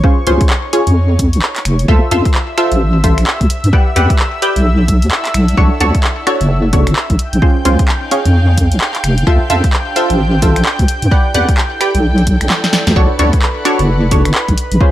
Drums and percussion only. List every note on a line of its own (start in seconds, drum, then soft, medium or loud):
0.04 kick loud
0.27 open hi-hat loud
0.41 kick loud
0.41 closed hi-hat medium
0.50 clap loud
0.73 open hi-hat loud
0.87 closed hi-hat medium
1.19 kick medium
1.19 open hi-hat loud
1.33 closed hi-hat medium
1.42 clap loud
1.56 clap medium
1.56 closed hi-hat soft
1.65 finger snap medium
1.65 open hi-hat loud
1.79 closed hi-hat medium
1.88 kick loud
2.11 open hi-hat loud
2.25 kick loud
2.25 closed hi-hat medium
2.34 clap loud
2.58 finger snap medium
2.58 open hi-hat medium
2.72 closed hi-hat medium
3.04 kick loud
3.04 open hi-hat medium
3.18 finger snap medium
3.18 closed hi-hat medium
3.27 clap loud
3.41 kick medium
3.41 closed hi-hat soft
3.50 open hi-hat loud
3.64 closed hi-hat medium
3.73 kick loud
3.96 open hi-hat medium
4.10 kick loud
4.10 closed hi-hat medium
4.19 clap loud
4.42 open hi-hat loud
4.56 closed hi-hat medium
4.88 kick medium
4.88 open hi-hat medium
5.02 closed hi-hat medium
5.11 clap loud
5.25 clap medium
5.25 closed hi-hat soft
5.34 finger snap medium
5.34 open hi-hat loud
5.48 closed hi-hat medium
5.57 kick loud
5.81 open hi-hat loud
5.95 kick medium
5.95 closed hi-hat medium
6.04 clap loud
6.27 finger snap medium
6.27 open hi-hat medium
6.41 closed hi-hat medium
6.73 kick loud
6.73 open hi-hat medium
6.87 finger snap soft
6.87 closed hi-hat medium
6.96 clap loud
7.10 kick medium
7.10 closed hi-hat soft
7.19 open hi-hat medium
7.33 closed hi-hat medium
7.42 kick loud
7.65 open hi-hat loud
7.79 kick loud
7.79 closed hi-hat medium
7.88 clap loud
8.11 open hi-hat loud
8.25 closed hi-hat medium
8.58 kick medium
8.58 open hi-hat loud
8.72 closed hi-hat medium
8.81 clap loud
8.95 clap medium
8.95 closed hi-hat medium
9.04 finger snap medium
9.04 open hi-hat loud
9.18 closed hi-hat medium
9.27 kick loud
9.50 open hi-hat loud
9.64 kick medium
9.64 closed hi-hat medium
9.73 clap loud
9.96 open hi-hat loud
10.10 closed hi-hat medium
10.42 kick medium
10.42 open hi-hat loud
10.56 finger snap medium
10.56 closed hi-hat medium
10.65 clap loud
10.79 kick medium
10.79 closed hi-hat medium
10.88 open hi-hat loud
11.02 closed hi-hat medium
11.11 kick loud
11.34 open hi-hat loud
11.49 kick loud
11.49 closed hi-hat medium
11.58 clap loud
11.81 finger snap medium
11.81 open hi-hat loud
11.95 closed hi-hat medium
12.18 closed hi-hat soft
12.27 kick medium
12.27 open hi-hat loud
12.41 finger snap medium
12.41 closed hi-hat medium
12.50 snare medium
12.50 clap loud
12.64 snare medium
12.64 closed hi-hat medium
12.73 snare medium
12.73 open hi-hat loud
12.87 snare medium
12.87 closed hi-hat medium
12.96 kick loud
13.19 open hi-hat loud
13.33 kick loud
13.33 closed hi-hat medium
13.42 clap loud
13.65 finger snap medium
13.65 open hi-hat loud
13.79 closed hi-hat medium
14.11 kick loud
14.11 open hi-hat loud
14.25 finger snap medium
14.25 closed hi-hat medium
14.34 clap loud
14.49 kick medium
14.49 closed hi-hat medium
14.58 open hi-hat loud
14.72 closed hi-hat medium
14.81 kick loud